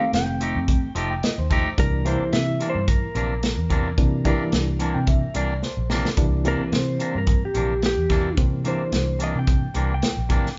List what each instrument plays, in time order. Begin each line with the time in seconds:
Already playing: reed electric piano D#3 G3 A3 C4, electric slide guitar F5
0.13 fingered electric bass F1, electric slide guitar G5, snare, closed hi-hat
0.40 clean electric guitar F3 A3 D#4 G4, closed hi-hat
0.56 fingered electric bass F2
0.68 kick, closed hi-hat
0.83 muted fingered electric bass stroke
0.95 fingered electric bass F1, clean electric guitar F3 A3 D#4 G4, reed electric piano A5, closed hi-hat
1.11 reed electric piano G5
1.23 reed electric piano D#5, snare, closed hi-hat
1.38 fingered electric bass D#2, reed electric piano C5
1.50 clean electric guitar F3 A3 D#4 G4, kick, closed hi-hat
1.78 fingered electric bass C2, reed electric piano E3 G3 A#3 D4, electric slide guitar A#4, kick, closed hi-hat
2.05 clean electric guitar C3 E3 A#3 D4, reed electric piano E3 G3 A#3 E4, electric slide guitar C5, closed hi-hat
2.33 fingered electric bass C3, electric slide guitar E5, snare, closed hi-hat
2.60 clean electric guitar C3 E3 A#3 D4, closed hi-hat
2.70 electric slide guitar C5
2.75 fingered electric bass G2
2.88 electric slide guitar A#4, kick, closed hi-hat
3.15 fingered electric bass A#1, clean electric guitar C3 E3 A#3 D4, closed hi-hat
3.43 snare, closed hi-hat
3.58 fingered electric bass E2
3.70 clean electric guitar C3 E3 A#3 D4, kick, closed hi-hat
3.98 fingered electric bass C3, reed electric piano E3 G3 A#3 D4, kick, closed hi-hat
4.25 clean electric guitar C3 E3 A#3 D4, reed electric piano E3 G3 A#3 D4, kick, closed hi-hat
4.52 fingered electric bass C2, snare, closed hi-hat
4.79 clean electric guitar C3 E3 A#3 D4, reed electric piano A5, closed hi-hat
4.94 fingered electric bass C3, reed electric piano G5
5.07 reed electric piano E5, kick, closed hi-hat
5.22 muted fingered electric bass stroke
5.34 fingered electric bass C2, clean electric guitar C3 E3 A#3 D4, reed electric piano D5, closed hi-hat
5.63 reed electric piano C5, snare
5.77 fingered electric bass A#1
5.90 clean electric guitar C3 E3 A#3 D4, snare
6.05 snare
6.17 fingered electric bass C2, reed electric piano E3 G3 A#3 D4, kick, closed hi-hat
6.45 clean electric guitar C3 E3 A#3 D4, reed electric piano E3 G3 A#3 C4, electric slide guitar A#4, closed hi-hat
6.64 electric slide guitar C5
6.72 fingered electric bass C3, snare, closed hi-hat
6.99 clean electric guitar C3 E3 A#3 D4, closed hi-hat
7.15 fingered electric bass G2, electric slide guitar A#4
7.27 kick, closed hi-hat
7.45 electric slide guitar G4
7.54 fingered electric bass A#1, clean electric guitar C3 E3 A#3 D4, closed hi-hat
7.82 electric slide guitar G4, snare, closed hi-hat
7.97 fingered electric bass E2
8.09 clean electric guitar C3 E3 A#3 D4, kick, snare, closed hi-hat
8.37 fingered electric bass C3, reed electric piano E3 G3 A#3 C4, kick, closed hi-hat
8.64 clean electric guitar C3 E3 A#3 D4, reed electric piano E3 G3 A#3 D4, electric slide guitar C5, closed hi-hat
8.92 fingered electric bass C2, snare, closed hi-hat
9.19 clean electric guitar C3 E3 A#3 D4, closed hi-hat
9.24 electric slide guitar D#5
9.35 fingered electric bass C3, electric slide guitar G5
9.47 kick, closed hi-hat
9.62 muted fingered electric bass stroke
9.74 fingered electric bass C2, clean electric guitar C3 E3 A#3 D4, closed hi-hat
9.94 electric slide guitar G5
10.02 snare, closed hi-hat
10.17 fingered electric bass A#1
10.29 clean electric guitar C3 E3 A#3 D4, kick, closed hi-hat
10.46 snare